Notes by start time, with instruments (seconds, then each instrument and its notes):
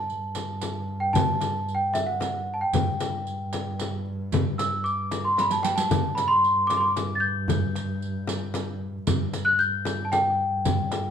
Already playing: double bass G2, celesta A5
0.09 riq, tombak ka
0.35 riq, tombak tek, frame drum
0.62 riq, tombak tek, frame drum
0.88 tombak ka
1.00 celesta G5
1.13 celesta A5, riq, tombak dum, frame drum
1.41 riq, tombak tek, frame drum
1.68 riq
1.75 celesta G5
1.94 celesta E5, riq, tombak tek, frame drum
2.07 celesta F#5
2.20 riq, tombak tek, frame drum
2.47 tombak ka
2.54 celesta A5
2.61 celesta G5
2.73 double bass G2, riq, tombak dum, frame drum
3.00 riq, tombak tek, frame drum
3.27 riq, tombak ka
3.53 riq, tombak tek, frame drum
3.79 riq, tombak tek, frame drum
4.06 tombak ka
4.32 riq, tombak dum, frame drum
4.58 celesta E6, riq, tombak tek, frame drum
4.84 celesta D6, riq, tombak ka
5.11 riq, tombak tek, frame drum
5.25 celesta C6
5.37 celesta B5, riq, tombak tek, frame drum
5.50 celesta A5, riq, tombak ka
5.63 celesta G5, riq, tombak tek
5.76 celesta A5, riq, tombak ka
5.90 double bass G2, riq, tombak dum, frame drum
6.15 celesta B5, riq, tombak tek, frame drum
6.28 celesta C6
6.44 riq, tombak ka
6.67 celesta D6, riq, tombak tek, frame drum
6.77 celesta C6 D6
6.96 riq, tombak tek, frame drum
7.15 celesta A6
7.20 celesta G6, tombak ka
7.48 riq, tombak dum, frame drum
7.75 riq, tombak tek
8.01 riq, tombak ka
8.28 riq, tombak tek, frame drum
8.54 riq, tombak tek, frame drum
9.06 double bass G2, riq, tombak dum, frame drum
9.33 riq, tombak tek, frame drum
9.45 celesta F#6
9.59 celesta G6, riq
9.85 riq, tombak tek, frame drum
10.05 celesta A5
10.12 celesta G5, riq, tombak tek, frame drum
10.40 tombak ka
10.65 riq, tombak dum, frame drum
10.91 riq, tombak tek, frame drum